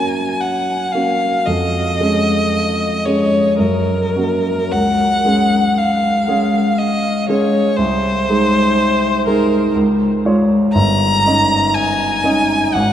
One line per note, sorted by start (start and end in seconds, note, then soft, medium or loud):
0.00 1.49 F#2 soft
0.00 0.94 A#3 soft
0.00 0.95 C#4 soft
0.00 0.95 F#4 soft
0.00 0.42 G#5 medium
0.41 0.93 F#5 soft
0.92 1.42 A#3 soft
0.92 1.43 C#4 soft
0.92 1.43 F#4 soft
0.92 1.47 F5 soft
1.46 1.98 F2 soft
1.46 3.07 D#5 medium
2.00 3.02 G#3 soft
2.00 3.03 C#4 soft
2.00 3.03 G#4 soft
3.05 3.55 G#3 soft
3.05 3.56 C#4 soft
3.05 3.56 G#4 soft
3.05 3.59 C#5 soft
3.59 4.14 F#2 soft
3.59 4.74 A#4 soft
4.16 4.69 A#3 soft
4.16 4.69 C#4 soft
4.16 4.69 F#4 soft
4.72 5.24 C#2 soft
4.72 5.80 F#5 medium
5.25 6.24 G#3 soft
5.25 6.24 C#4 soft
5.25 6.25 G#4 soft
5.78 6.79 F5 soft
6.28 7.25 G#3 soft
6.28 7.25 C#4 soft
6.28 7.25 G#4 soft
6.78 7.29 D#5 medium
7.28 7.74 G#3 soft
7.28 7.75 C#4 soft
7.28 7.75 G#4 soft
7.28 7.78 C#5 medium
7.76 8.27 C2 soft
7.76 9.26 C5 medium
8.29 9.23 G#3 soft
8.29 9.24 D#4 soft
8.29 9.24 G#4 soft
9.26 9.71 G#3 soft
9.26 9.71 D#4 soft
9.26 9.72 G#4 soft
9.26 9.74 A#4 medium
9.75 10.23 C#2 medium
10.25 10.71 G#3 soft
10.25 10.71 F4 soft
10.25 10.72 C#5 soft
10.73 11.24 G1 medium
10.73 11.75 A#5 medium
11.26 12.21 C#4 soft
11.26 12.21 D#4 soft
11.26 12.21 D#5 soft
11.74 12.75 G#5 medium
12.24 12.70 C#4 soft
12.24 12.70 D#4 soft
12.24 12.70 D#5 soft
12.74 12.93 G#1 medium
12.74 12.93 F#5 medium